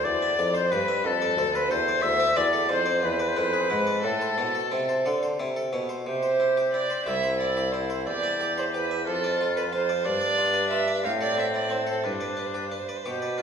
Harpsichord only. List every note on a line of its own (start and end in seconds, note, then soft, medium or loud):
0.05 0.35 E2 soft
0.22 0.40 E5 soft
0.39 0.69 F2 medium
0.39 0.56 G4 soft
0.55 0.72 C5 soft
0.72 1.02 G2 medium
0.72 0.89 G4 soft
0.88 1.05 E5 medium
1.04 1.34 F2 medium
1.22 1.39 D5 soft
1.38 1.68 D2 medium
1.38 1.55 A4 medium
1.55 1.72 C5 medium
1.71 2.00 E2 medium
1.71 1.88 A4 soft
1.88 2.04 D5 medium
2.04 2.33 D2 medium
2.20 2.37 D5 medium
2.36 2.66 E2 medium
2.36 2.54 F4 medium
2.53 2.71 A4 medium
2.69 3.00 F2 medium
2.69 2.87 F4 soft
2.86 3.03 D5 medium
3.03 3.33 E2 medium
3.19 3.37 D5 medium
3.36 3.67 F2 medium
3.36 3.55 E4 soft
3.54 3.71 G#4 soft
3.70 4.01 G#2 medium
3.70 3.88 E4 soft
3.87 4.04 D5 soft
4.04 4.35 A2 soft
4.21 4.39 C5 soft
4.38 4.69 B2 soft
4.38 4.56 E4 soft
4.55 4.73 A4 soft
4.71 5.02 C3 soft
4.71 4.90 E4 soft
4.89 5.07 C5 soft
5.05 5.36 D3 soft
5.05 5.24 A4 soft
5.23 5.41 C5 soft
5.39 5.70 C3 soft
5.39 5.58 E4 soft
5.56 5.74 A4 soft
5.73 6.04 B2 soft
5.73 5.91 E4 soft
5.89 6.07 C5 soft
6.06 7.03 C3 soft
6.23 6.41 C5 soft
6.40 6.58 E4 soft
6.57 6.75 G4 soft
6.74 6.92 E4 soft
6.90 7.08 C5 soft
7.06 8.03 C2 soft
7.06 7.25 G4 soft
7.23 7.41 C5 soft
7.41 7.58 E4 soft
7.57 7.75 G4 soft
7.74 7.91 E4 soft
7.90 8.07 C5 soft
8.07 9.03 E2 soft
8.23 8.41 E5 soft
8.41 8.58 G4 soft
8.58 8.75 C5 soft
8.74 8.91 G4 soft
8.91 9.07 E5 soft
9.07 10.02 F2 soft
9.24 9.41 D5 soft
9.41 9.58 F4 soft
9.57 9.74 C5 soft
9.73 9.90 F4 soft
9.89 10.06 D5 soft
10.05 11.01 G2 soft
10.21 10.39 D5 soft
10.38 10.56 F4 soft
10.54 10.72 B4 soft
10.71 10.89 F4 soft
10.88 11.05 D5 soft
11.04 12.01 A2 soft
11.21 11.39 A4 soft
11.37 11.56 C4 soft
11.54 11.72 E4 soft
11.70 11.89 C4 soft
11.87 12.05 A4 soft
12.04 12.73 G2 soft
12.21 12.39 D5 soft
12.37 12.56 D4 soft
12.54 12.73 G4 soft
12.71 12.90 D4 soft
12.89 13.07 D5 soft
13.06 13.42 B2 soft
13.06 13.24 G4 soft
13.22 13.40 D5 soft
13.38 13.42 D4 soft